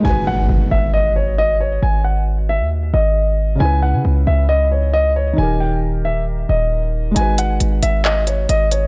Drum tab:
HH |--------|--------|--------|--------|
CP |--------|--------|--------|--------|

HH |xxxx-xxx|
CP |----x---|